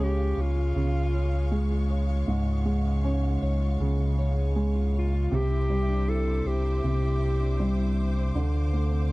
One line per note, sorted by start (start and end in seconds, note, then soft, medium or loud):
0.00 0.34 C#2 loud
0.00 0.74 C#3 medium
0.00 0.76 C#3 medium
0.00 1.22 F3 medium
0.00 1.10 G#3 medium
0.00 5.28 G#3 medium
0.00 1.32 C#4 medium
0.00 1.48 C#4 medium
0.00 0.18 F4 medium
0.00 0.43 G4 medium
0.00 0.37 C#5 medium
0.00 5.28 F5 medium
0.00 5.28 C#6 medium
0.19 0.56 F4 medium
0.37 0.73 C#2 loud
0.37 1.13 C#5 medium
0.41 1.92 F4 medium
0.57 0.94 F4 medium
0.76 2.24 C#2 loud
0.76 2.24 C#3 medium
0.76 2.28 C#3 medium
0.95 1.70 F4 medium
1.14 1.51 C#5 medium
1.33 2.84 C#4 medium
1.51 2.64 G#3 medium
1.51 1.89 C#5 medium
1.71 2.08 F4 medium
1.90 2.66 C#5 medium
2.09 2.46 F4 medium
2.28 3.38 C#2 loud
2.28 5.28 G#2 medium
2.28 3.79 C#3 medium
2.48 3.23 F4 medium
2.65 4.14 G#3 medium
2.65 3.04 C#5 medium
2.85 4.36 C#4 medium
3.04 4.52 C#4 medium
3.04 3.41 C#5 medium
3.24 3.60 F4 medium
3.42 3.77 C#2 loud
3.42 4.18 C#5 medium
3.61 3.99 F4 medium
3.80 5.28 C#2 loud
3.80 5.28 C#3 medium
3.80 5.32 C#3 medium
4.00 4.74 F4 medium
4.19 4.55 C#5 medium
4.37 5.40 C#4 medium
4.56 5.30 G#3 medium
4.56 4.93 C#5 medium
4.75 5.12 F4 medium
4.94 5.40 C#5 medium
4.99 5.37 F4 medium
5.13 5.40 F4 medium
5.32 6.42 C2 loud
5.32 6.82 C3 medium
5.32 6.83 C3 medium
5.32 6.10 G4 loud
5.32 9.12 C5 medium
5.32 8.33 E5 medium
5.32 9.12 D6 medium
5.51 6.26 E4 medium
5.70 7.18 G3 medium
5.70 6.08 C5 medium
5.89 7.40 D4 medium
6.08 7.56 E4 medium
6.08 6.48 A4 loud
6.08 6.46 C5 medium
6.27 6.64 E4 medium
6.46 6.81 C2 medium
6.46 7.98 G4 loud
6.46 7.21 C5 medium
6.65 7.02 E4 medium
6.84 8.32 C2 loud
6.84 8.32 C3 medium
6.84 8.43 C3 medium
7.03 7.77 E4 medium
7.22 7.59 C5 medium
7.41 8.76 D4 medium
7.59 8.33 G3 medium
7.59 7.97 C5 medium
7.78 8.15 E4 medium
7.97 8.73 C5 medium
8.16 8.43 E4 medium
8.35 9.12 D2 loud
8.35 9.12 D3 medium
8.35 9.12 F5 medium
8.54 9.12 F4 medium
8.73 9.12 A3 medium
8.73 9.10 C5 medium
8.92 9.12 C4 medium